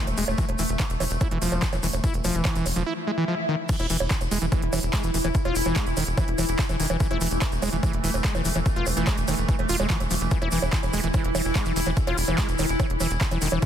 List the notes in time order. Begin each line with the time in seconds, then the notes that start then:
Already playing: E3 A3
0.07 E1, closed hi-hat, high bongo, shaker
0.17 E1 G#3, open hi-hat, shaker
0.28 E1, closed hi-hat, high bongo, shaker
0.38 E3, kick, closed hi-hat, shaker
0.49 E1, closed hi-hat, high bongo
0.58 E1 E3, open hi-hat, shaker
0.69 E1, closed hi-hat, shaker
0.79 D#3, kick, clap, closed hi-hat, high bongo, shaker
0.90 E1, closed hi-hat, shaker
1.00 E1 E3, open hi-hat, high bongo, shaker
1.11 E1, closed hi-hat, shaker
1.20 E4, kick, closed hi-hat, high bongo, shaker
1.31 E1 E3, closed hi-hat
1.42 E1 F3, open hi-hat, shaker
1.52 E1, closed hi-hat, high bongo, shaker
1.62 E3, kick, clap, closed hi-hat, shaker
1.73 E1 E3, closed hi-hat, high bongo, shaker
1.83 E1 E3, open hi-hat, shaker
1.93 E1, closed hi-hat, high bongo, shaker
2.04 E4, kick, closed hi-hat, shaker
2.13 E1, closed hi-hat, shaker
2.24 E1 F3, open hi-hat, high bongo, shaker
2.35 E1 E3, closed hi-hat, shaker
2.45 E3, kick, clap, closed hi-hat, high bongo, shaker
2.55 E1 E3, closed hi-hat, shaker
2.66 E1, open hi-hat, high bongo, shaker
2.76 E1 F3, closed hi-hat, shaker
2.86 E4, swell
3.07 G#3
3.18 E3
3.28 F3
3.49 D#3
3.69 E3 E4, kick, closed hi-hat, crash, shaker
3.80 E1 E4, closed hi-hat, high bongo
3.90 E1 E3, open hi-hat, shaker
4.00 E1, closed hi-hat, high bongo, shaker
4.11 kick, clap, closed hi-hat, shaker
4.21 E1, closed hi-hat, high bongo, shaker
4.31 E1 G#3, open hi-hat, shaker
4.42 E1 E3, closed hi-hat, shaker
4.52 E3, kick, closed hi-hat, high bongo, shaker
4.62 E1, closed hi-hat
4.73 E1 E3, open hi-hat, high bongo, shaker
4.83 E1, closed hi-hat, shaker
4.93 G#3, kick, clap, closed hi-hat, high bongo, shaker
5.03 E1 E3, closed hi-hat, shaker
5.14 E1 E3, open hi-hat, shaker
5.24 E1 E3, closed hi-hat, high bongo, shaker
5.35 kick, closed hi-hat, shaker
5.45 E1 F4, closed hi-hat, high bongo
5.55 E1, open hi-hat, shaker
5.66 E1 E3, closed hi-hat, high bongo, shaker
5.75 G#3, kick, clap, closed hi-hat, shaker
5.86 E1, closed hi-hat, shaker
5.97 E1 D#3, open hi-hat, high bongo, shaker
6.07 E1, closed hi-hat, shaker
6.18 E3, kick, closed hi-hat, high bongo, shaker
6.28 E1, closed hi-hat
6.38 E1 E3, open hi-hat, high bongo, shaker
6.49 E1, closed hi-hat, shaker
6.59 E3, kick, clap, closed hi-hat, shaker
6.69 E1 E3, closed hi-hat, high bongo, shaker
6.80 E1 D#3, open hi-hat, shaker
6.90 E1 E3, closed hi-hat, high bongo, shaker
7.00 E3 A3, kick, closed hi-hat, shaker
7.11 E1 E4, closed hi-hat, high bongo
7.21 E1 E3, open hi-hat, shaker
7.31 E1, closed hi-hat, shaker
7.41 kick, clap, closed hi-hat, high bongo, shaker
7.52 E1, closed hi-hat, shaker
7.62 E1 G#3, open hi-hat, high bongo, shaker
7.73 E1 E3, closed hi-hat, shaker
7.83 E3, kick, closed hi-hat, high bongo, shaker
7.93 E1, closed hi-hat
8.04 E1 E3, open hi-hat, shaker
8.14 E1, closed hi-hat, high bongo, shaker
8.24 G#3, kick, clap, closed hi-hat, shaker
8.35 E1 E3, closed hi-hat, high bongo, shaker
8.45 E1 E3, open hi-hat, shaker
8.55 E1 E3, closed hi-hat, high bongo, shaker
8.66 kick, closed hi-hat, shaker
8.76 E1 F4, closed hi-hat
8.86 E1, open hi-hat, high bongo, shaker
8.97 E1 E3, closed hi-hat, shaker
9.07 G#3, kick, clap, closed hi-hat, high bongo, shaker
9.17 E1, closed hi-hat, shaker
9.28 E1 D#3, open hi-hat, high bongo, shaker
9.38 E1, closed hi-hat, shaker
9.49 E3, kick, closed hi-hat, shaker
9.59 E1, closed hi-hat, high bongo
9.69 E1 F4, open hi-hat, shaker
9.80 E1 G#3, closed hi-hat, high bongo, shaker
9.90 E3, kick, clap, closed hi-hat, shaker
10.00 E1, closed hi-hat, high bongo, shaker
10.11 E1 F3, open hi-hat, shaker
10.21 E1, closed hi-hat, shaker
10.31 E3 E4, kick, closed hi-hat, shaker
10.42 E1 E4, closed hi-hat, high bongo
10.51 E1 E3, open hi-hat, shaker
10.62 E1, closed hi-hat, high bongo, shaker
10.73 kick, clap, closed hi-hat, shaker
10.83 E1, closed hi-hat, high bongo, shaker
10.93 E1 G#3, open hi-hat, shaker
11.04 E1 E3, closed hi-hat, shaker
11.14 E3, kick, closed hi-hat, high bongo, shaker
11.24 E1, closed hi-hat
11.35 E1 E3, open hi-hat, high bongo, shaker
11.44 E1, closed hi-hat, shaker
11.55 G#3, kick, clap, closed hi-hat, high bongo, shaker
11.65 E1 E3, closed hi-hat, shaker
11.76 E1 E3, open hi-hat, shaker
11.87 E1 E3, closed hi-hat, high bongo, shaker
11.97 kick, closed hi-hat, shaker
12.07 E1 F4, closed hi-hat, high bongo
12.18 E1, open hi-hat, shaker
12.28 E1 E3, closed hi-hat, high bongo, shaker
12.38 G#3, kick, clap, closed hi-hat, shaker
12.49 E1, closed hi-hat, shaker
12.58 E1 D#3, open hi-hat, high bongo, shaker
12.69 E1, closed hi-hat, shaker
12.80 E3, kick, closed hi-hat, high bongo, shaker
12.90 E1, closed hi-hat
13.00 E1 E3, open hi-hat, high bongo, shaker
13.10 E1, closed hi-hat, shaker
13.21 E3, kick, clap, closed hi-hat, shaker
13.31 E1 E3, closed hi-hat, high bongo, shaker
13.41 E1 D#3, open hi-hat, shaker
13.52 E1 E3, closed hi-hat, high bongo, shaker
13.62 E3 A4, kick, closed hi-hat, shaker